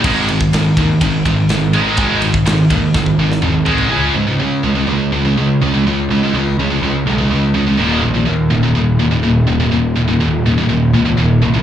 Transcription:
<<
  \new Staff \with { instrumentName = "Distorted electric guitar" } { \clef bass \time 4/4 \key des \mixolydian \tempo 4 = 124 <aes, ees aes>8 <aes, ees>8 <aes, ees>8 <aes, ees>8 <aes, ees>8 <aes, ees>8 <aes, ees>8 <aes, ees aes>8 | <aes, ees aes>8 <aes, ees>8 <aes, ees>8 <aes, ees>8 <aes, ees>8 <aes, ees>8 <aes, ees>8 <aes, ees aes>8 | <des aes des'>8 <des aes>16 <des aes>16 <des aes>8 <des aes>16 <des aes>16 <des aes>8 <des aes>16 <des aes>16 <des aes>8 <des aes>16 <des aes>16 | <des aes>8 <des aes>16 <des aes>16 <des aes>8 <des aes>16 <des aes>16 <des aes>8 <des aes>16 <des aes>16 <des aes>8 <des aes>16 <des aes>16 |
<ees, bes, ees>8 <ees, bes,>16 <ees, bes,>16 <ees, bes,>8 <ees, bes,>16 <ees, bes,>16 <ees, bes,>8 <ees, bes,>16 <ees, bes,>16 <ees, bes,>8 <ees, bes,>16 <ees, bes,>16 | <ees, bes,>8 <ees, bes,>16 <ees, bes,>16 <ees, bes,>8 <ees, bes,>16 <ees, bes,>16 <ees, bes,>8 <ees, bes,>16 <ees, bes,>16 <ees, bes,>8 <ees, bes,>16 <ees, bes,>16 | }
  \new Staff \with { instrumentName = "Picked electric bass" } { \clef bass \time 4/4 \key des \mixolydian aes,,4 aes,,8 ees,8 aes,,8 aes,,8 aes,,4 | aes,,4 aes,,8 ees,8 aes,,8 aes,,8 aes,,4 | des,8 aes,8 des8 des,8 des,8 des,8 des,8 des,8 | des,8 des,8 des,8 des,8 des,8 ces,8 des,8 des,8 |
ees,,8 bes,,8 ees,8 ees,,8 ees,,8 ees,,8 ees,,8 ees,,8 | ees,,8 ees,,8 ees,,8 ees,,8 ees,,8 des,8 ees,,8 c,8 | }
  \new DrumStaff \with { instrumentName = "Drums" } \drummode { \time 4/4 <cymc bd>8 cymr16 bd16 <cymr sn>8 <bd cymr>8 <bd cymr>8 <bd cymr>8 <cymr sn>8 cymr8 | <bd cymr>8 cymr16 bd16 <cymr sn>8 <bd cymr>8 <bd sn>16 bd8 sn16 toml8 tomfh16 tomfh16 | r4 r4 r4 r4 | r4 r4 r4 r4 |
r4 r4 r4 r4 | r4 r4 r4 r4 | }
>>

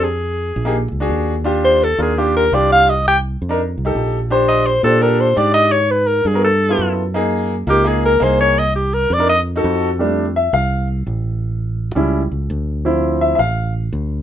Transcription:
<<
  \new Staff \with { instrumentName = "Alto saxophone" } { \time 4/4 \key bes \major \tempo 4 = 168 aes'2 r2 | r8 c''8 a'8 aes'8 g'8 bes'8 d''8 f''8 | ees''8 g''8 r2. | r8 ees''8 c''8 a'8 bes'8 c''8 d''8 ees''8 |
des''8 ces''8 bes'8 aes'8 a'4. r8 | r4. g'8 aes'8 bes'8 c''8 des''8 | ees''8 g'8 bes'8 d''8 ees''8 r4. | \key f \major r1 |
r1 | r1 | }
  \new Staff \with { instrumentName = "Grand piano" } { \time 4/4 \key bes \major << { r4. r16 <bes ees' g' aes'>16 r8. <d' fis' aes'>8. r8 | <d' f' g'>4 r8 <d' f' bes'>16 r16 <d' f' g'>8. r16 <d' f' g'>4 | r4. r16 <d' ees' bes'>16 r8. <ees' g' a'>8. r8 | <d' g' c''>4 r8 <d' g' c''>16 r16 <d' g' a'>8. r16 <d' g' d''>4 |
r4. r16 <ces' ges' bes'>16 r8. <b e' f' a'>8. r8 | <bes ees' aes'>4 r8 <bes ees' bes'>16 r16 <bes ees' aes'>8. r16 <bes ees' aes'>4 | r4. r16 <d' ees' bes'>16 r8. <ees' ges' a'>8. r8 | \key f \major r4 e''8 f''4 r4. |
r1 | r4 e''8 <e'' f''>4 r4. | } \\ { r1 | r1 | r1 | r1 |
r1 | r1 | r1 | <g a d'>8 r2. r8 |
r4. <g cis' e'>8 r2 | <f c' e'>4. r2 r8 | } >> }
  \new Staff \with { instrumentName = "Fingered electric bass" } { \clef bass \time 4/4 \key bes \major f,4. bes,,4 cis,8 ees,4~ | ees,4. ees,4. c,4~ | c,4. f,4 c,8 bes,,4~ | bes,,4. bes,4. aes,4~ |
aes,4. g,4. ges,4~ | ges,4. des,4. c,4~ | c,4. f,4. f,4~ | \key f \major f,4. c,4. a,,4~ |
a,,4. cis,4 cis,8 d,4~ | d,4. a,,4. d,4 | }
>>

